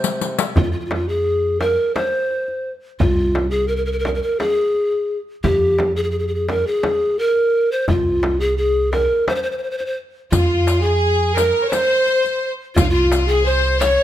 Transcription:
Already playing: C3 C5
0.04 riq, darbuka ka
0.21 riq
0.39 riq
0.56 F2 F4, darbuka dum, frame drum
0.63 F4
0.72 F4
0.80 F4
0.85 F4
0.91 F4, darbuka tek, frame drum
1.08 G#4
1.60 A#4, darbuka tek, frame drum
1.95 C5, darbuka tek, frame drum
2.31 darbuka ka
2.48 darbuka ka
3.00 C2 F4, frame drum, darbuka dum
3.35 darbuka tek, frame drum
3.51 G#4
3.68 A#4
3.76 A#4
3.86 A#4
3.92 A#4
3.99 A#4
4.05 A#4, darbuka tek, frame drum
4.14 A#4
4.22 A#4
4.40 G#4, darbuka tek, frame drum
4.75 darbuka ka
4.92 darbuka ka
5.43 F2 G4, darbuka dum, frame drum
5.78 darbuka tek, frame drum
5.96 G#4
6.04 G#4
6.11 G#4
6.19 G#4
6.28 G#4
6.35 G#4
6.49 A#4, darbuka tek, frame drum
6.67 G#4
6.83 darbuka tek, frame drum
7.18 A#4, darbuka ka
7.36 darbuka ka
7.72 C5
7.88 C2 F4, darbuka dum, frame drum
8.23 darbuka tek, frame drum
8.40 G#4
8.58 G#4
8.92 A#4, darbuka tek, frame drum
9.28 C5, darbuka tek, frame drum
9.35 C5
9.43 C5
9.51 C5
9.58 C5
9.63 C5
9.71 C5
9.78 C5, darbuka ka
9.86 C5
10.31 F2 F4, riq, darbuka dum, frame drum
10.67 riq, darbuka tek
10.82 G#4
11.34 A#4, riq, darbuka tek, frame drum
11.65 C#5
11.69 C5, riq, darbuka tek, frame drum
12.07 riq, darbuka ka
12.24 riq, darbuka ka
12.75 C2 F4, riq, darbuka dum, frame drum
12.83 D#4
12.89 F4
13.12 riq, darbuka tek, frame drum
13.28 G#4
13.45 C5
13.80 C#5, riq, darbuka tek, frame drum

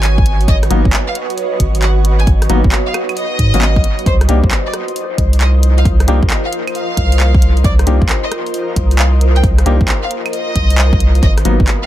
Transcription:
Already playing: G#1 F#4 B4 C#5 D#5 G#5
0.03 clap, closed hi-hat
0.18 kick
0.26 closed hi-hat
0.41 closed hi-hat
0.48 G#1 D#5, kick, closed hi-hat
0.63 cross-stick, closed hi-hat
0.70 G#1 F#3 A#3 B3 D#4, closed hi-hat
0.85 G#1, kick
0.93 clap, closed hi-hat
1.08 F5
1.15 closed hi-hat
1.30 closed hi-hat
1.38 closed hi-hat
1.60 G#1, kick, closed hi-hat
1.75 closed hi-hat
1.82 F#5, clap, closed hi-hat
2.05 closed hi-hat
2.20 G#5, closed hi-hat
2.27 G#1, kick, closed hi-hat
2.42 cross-stick, closed hi-hat
2.50 G#1 F#3 A#3 B3 D#4, closed hi-hat
2.64 G#1, kick
2.72 clap, closed hi-hat
2.87 F5
2.94 cross-stick, closed hi-hat, claves
3.09 closed hi-hat, claves
3.17 D#5, closed hi-hat
3.39 G#2, kick, closed hi-hat
3.54 G#1 F#3 A#3 B3 C#4, closed hi-hat
3.62 clap, closed hi-hat
3.76 B1, kick
3.84 closed hi-hat
3.99 closed hi-hat
4.06 C2 F4 C5, kick, closed hi-hat
4.21 cross-stick, closed hi-hat
4.29 C2 A#3 D4 D#4 G4, closed hi-hat
4.35 A#4
4.44 C2, kick
4.51 clap, closed hi-hat
4.66 D5
4.74 cross-stick, closed hi-hat
4.88 closed hi-hat
4.96 closed hi-hat
5.18 C2, kick, closed hi-hat
5.33 closed hi-hat
5.41 D#5, clap, closed hi-hat
5.63 closed hi-hat
5.78 F5, closed hi-hat
5.85 C2, kick, closed hi-hat
6.00 cross-stick, closed hi-hat
6.08 C2 A#3 D4 D#4 G4, closed hi-hat
6.23 C2, kick
6.30 clap, closed hi-hat
6.45 F5
6.53 closed hi-hat
6.67 closed hi-hat, claves
6.75 F5, closed hi-hat
6.97 C2, kick, closed hi-hat
7.12 closed hi-hat
7.20 clap, closed hi-hat
7.35 kick
7.42 closed hi-hat
7.57 closed hi-hat
7.64 C2 D5, kick, closed hi-hat
7.79 cross-stick, closed hi-hat
7.87 C2 A#3 D4 D#4 G4, closed hi-hat
8.02 C2, kick
8.09 clap, closed hi-hat
8.24 D#5
8.32 cross-stick, closed hi-hat
8.46 closed hi-hat
8.54 closed hi-hat
8.76 C2, kick, closed hi-hat
8.91 closed hi-hat
8.99 F5, clap, closed hi-hat
9.21 closed hi-hat
9.36 G5, closed hi-hat
9.44 C2, kick, closed hi-hat
9.59 cross-stick, closed hi-hat
9.66 C2 A#3 D4 D#4 G4, closed hi-hat
9.81 C2, kick
9.88 clap, closed hi-hat
10.03 F5
10.11 closed hi-hat
10.26 closed hi-hat, claves
10.33 D#5, closed hi-hat
10.56 C2, kick, closed hi-hat
10.70 closed hi-hat
10.78 clap, closed hi-hat
10.93 C2, kick
11.00 closed hi-hat
11.15 closed hi-hat
11.23 G#1 F#4 B4 D#5, kick, closed hi-hat
11.38 cross-stick, closed hi-hat
11.45 G#1 F#3 A#3 B3 D#4, closed hi-hat
11.60 G#1 B4, kick
11.68 clap, closed hi-hat
11.82 F5

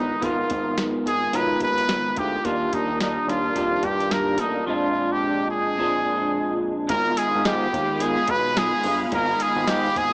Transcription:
Already playing: G1 G#2 D#3 G#3 B3 D#4 F4 A#4 A#5
0.20 G#1 G#2 D#3 G#3 B3 D#4 F4 A#4, kick, closed hi-hat
0.24 B3 F4
0.50 G#1, kick, closed hi-hat
0.78 snare, closed hi-hat
1.06 G#1 G#4, closed hi-hat
1.33 B1 G#2 D#3 G#3 B3 D#4 F4 B4 A#5, closed hi-hat
1.60 D#2 B4, kick, closed hi-hat
1.78 closed hi-hat
1.89 G#1, snare, closed hi-hat
2.16 D2 G#3 B3 F4 G4, kick, closed hi-hat
2.44 D#2 D#3 G3 A#3 D4 F4 G4, kick, closed hi-hat
2.73 D#2 D#4, kick, closed hi-hat
2.98 D#3 G3 A#3 D4 D#4, snare, closed hi-hat
3.27 D#2 F4, snare, closed hi-hat
3.55 F2 D#3 G3 A#3 D4 F4 G4, kick, closed hi-hat
3.83 G2 G4, kick, closed hi-hat
4.00 closed hi-hat
4.11 A#4, snare, closed hi-hat
4.38 A1 A#3 D4 D#4, closed hi-hat
4.42 G3
4.65 A#2 F3 C4 D4 F4
4.69 G#3 D4 F4
5.12 G4
5.51 G#4
5.77 A#2 F3 G#3 C4 D4 F4 G#4
5.82 D4
6.88 G#1 G#2 D#3 G#3 B3 A#4 F5 B5 D#6, kick, closed hi-hat
6.93 F4
7.17 G#4, closed hi-hat
7.35 G#1
7.45 G#2 G4, snare, closed hi-hat
7.73 D#2, kick, closed hi-hat
7.99 D#3 G#3 B3 F4 G#4, closed hi-hat
8.28 B1 B4, kick, closed hi-hat
8.57 G#4, snare, closed hi-hat
8.83 G1 G#3 B3 F4, open hi-hat
9.11 G#1 G#2 D#3 G#3 B3 A#4, kick, closed hi-hat
9.16 F4
9.40 G#4, closed hi-hat
9.56 G#1
9.67 G#2 G4, snare, closed hi-hat
9.96 G#1 G#4, kick, closed hi-hat

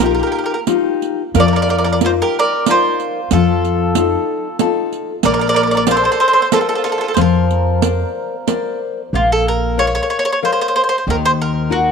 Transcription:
Already playing: A#1
0.00 D#4 F4 G4, riq
0.06 A#4
0.11 G4 A#4
0.19 G4 A#4
0.27 G4
0.32 G4 A#4
0.38 A#4
0.44 G4 A#4
0.50 G4
0.54 A#4
0.67 D#4 F4 G4, riq
1.02 riq
1.34 F2 F3 A#4, riq
1.40 D5
1.46 A#4 D5
1.53 A#4 D5
1.62 A#4 D5
1.69 A#4 D5, riq
1.78 A#4 D5
1.84 A#4 D5
1.92 A#4 D5
2.01 D#4 F4 A#4, riq
2.06 C5
2.22 G4 A#4
2.39 A#4 D5
2.66 D#4 F4 A#4, riq
2.71 C5
3.00 riq
3.31 F2 F3 F4 A4, riq
3.65 riq
3.95 D#4 F4 A4, riq
4.59 D#4 F4 A4, riq
4.92 riq
5.23 A#1 A#3 A#4 D5, riq
5.33 A#4 D5
5.39 A#4 D5
5.48 A#4 D5
5.54 A#4 D5, riq
5.62 A#4 D5
5.67 A#4 D5
5.75 A#4 D5
5.86 F4 A#4 C5 D5, riq
5.91 C5
5.96 A4 C5
6.04 A4 C5
6.12 A4 C5
6.20 A4 C5
6.28 A4 C5
6.33 A4 C5
6.41 A4 C5
6.52 F4 A4 A#4 C5 D5, riq
6.61 F4 A4
6.69 F4 A4
6.75 F4 A4
6.84 F4 A4, riq
6.90 F4 A4
6.98 F4 A4
7.04 F4
7.08 A4
7.14 F2 F3 F4 C5, riq
7.21 A#4
7.51 riq
7.82 A#4 C5 D5, riq
8.47 A#4 C5 D5, riq
9.13 A#1 A#3 F4
9.32 A4
9.48 A#4
9.78 A#4 C#5 F5
9.87 C#5
9.95 C#5
10.03 C#5
10.10 C#5
10.19 C#5
10.25 C#5
10.32 C#5
10.42 A#4 C5 C#5 F5
10.52 C5
10.61 C5
10.68 C5
10.76 C5
10.84 C5
10.89 C5
10.98 C5
11.07 D#2 D#3 A#4
11.25 C5
11.42 A#4
11.70 D#4 F#4 A#4

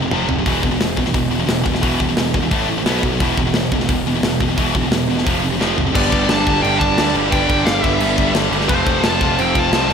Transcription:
Already playing: F1
0.02 F2 C3
0.11 F1 F2 C3 F3, mid tom
0.28 F1 F2 C3, floor tom
0.38 F2 C3
0.46 E1 E2 B2 E3, kick, open hi-hat
0.63 E1 E2 B2, kick
0.71 E2 B2
0.79 E1 E2 B2, snare, open hi-hat
0.97 E1 E2 B2, kick
1.06 E2 B2, snare
1.14 E1 E2 B2, kick, open hi-hat
1.29 E1 E2 B2
1.39 E2 B2
1.46 E1 E2 B2, snare, open hi-hat
1.64 E1 E2 B2, kick
1.74 E2 B2, snare
1.82 E1 E2 B2 E3, kick, open hi-hat
2.00 E1 E2 B2, kick
2.09 E2 B2
2.16 E1 E2 B2, snare, open hi-hat
2.34 E1 E2 B2, kick
2.42 E2 B2
2.51 A1 A2 E3 A3, kick, open hi-hat
2.68 A1 A2 E3
2.78 A2 E3
2.84 B1 B2 F#3 B3, snare, open hi-hat
3.03 B1 B2 F#3, kick
3.13 B2 F#3
3.20 E1 E2 B2 E3, kick, open hi-hat
3.37 E1 E2 B2, kick
3.47 E2 B2
3.54 E1 E2 B2, snare, open hi-hat
3.72 E1 E2 B2, kick
3.80 E2 B2, snare
3.89 E1 E2 B2, kick, open hi-hat
4.05 E1 E2 B2
4.16 E2 B2
4.22 E1 E2 B2, snare, open hi-hat
4.40 E1 E2 B2, kick
4.50 E2 B2
4.58 E1 E2 B2 E3, kick, open hi-hat
4.75 E1 E2 B2, kick
4.84 E2 B2
4.91 E1 E2 B2, snare, open hi-hat
5.08 E1 E2 B2
5.18 E2 B2, snare
5.26 F1 F2 C3 F3, kick, open hi-hat
5.42 F1 F2 C3
5.53 F2 C3
5.60 F1 F2 C3 F3, snare
5.78 F#1 F2 C3, floor tom
5.87 F2 C3
5.94 G1 G2 D3 G3 B3 D4 A4 B4 D5, kick, crash
6.12 G1, kick, crash
6.29 G1 D4 A5, snare, crash
6.46 G1 G2 D3 G3, kick, crash
6.62 G1 D4 G5, crash
6.79 D4 A5, kick, crash
6.98 D2 G2 D3 G3, snare, crash
7.14 G1 G2 D3 G3, crash
7.32 G1 G2 D3 D4 G5, kick, crash
7.36 G3
7.49 G1, kick, crash
7.65 G1 D4 F5, snare, crash
7.81 G1 D3 G3 B3 E5, kick, crash
7.86 G2
8.00 G1, crash
8.18 G1, kick, crash
8.34 G1 G2 D3 G3, snare, crash
8.50 G1 G2 D3 G3, crash
8.61 snare
8.68 F1 F2 C3 F3 A3 C4 G4 C5, kick, crash
8.86 F1, kick, crash
9.03 F1 F4 A5, snare, crash
9.20 F1 F2 C3 F3, kick, crash
9.39 F1 C4 G5, crash
9.55 F4 A5, kick, crash
9.72 C2 F2 C3 F3, snare, crash
9.88 F1 F3, snare, crash

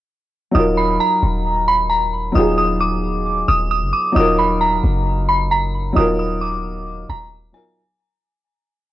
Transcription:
0.51 D#1 F#3 D#4 D#6
0.56 F4 A#4
0.77 B5
1.00 A#5
1.23 D#1
1.68 B5
1.90 A#5
2.32 D#1 F#3 D#4 D#6
2.37 F4 G#4
2.58 D#6
2.80 D6
3.48 D#1 D#6
3.71 D#6
3.82 F#1
3.93 D6
4.12 D#1 F#3 D#4 D#6
4.17 F4 A#4
4.39 B5
4.61 A#5
4.84 F#1
5.29 B5
5.51 A#5
5.93 D#1 F#3 D#4 D#6
5.97 F4 A#4
6.19 D#6
6.41 D6
7.09 D#1 A#5
7.52 F#3 D#4 F4 A#4 G#5

